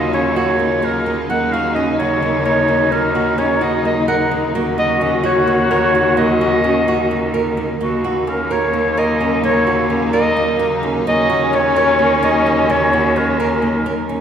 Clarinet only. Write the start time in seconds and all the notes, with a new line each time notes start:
Already playing: D#5
0.14 C#5
0.38 C#5
0.85 A#4
1.30 F#5
1.53 F5
1.75 D#5
1.99 C#5
2.45 C#5
2.92 A#4
3.39 C#5
3.63 D#5
3.87 D#5
4.08 F#5
4.79 D#5
5.03 D#5
5.25 C#5
5.71 C#5
6.18 D#5
7.81 F#4
8.28 A#4
8.52 C#5
8.98 D#5
9.45 C#5
10.13 D#5
11.08 D#5
11.55 C#5
11.78 C#5
12.24 D#5
12.71 C#5
13.17 A#4
13.39 A#4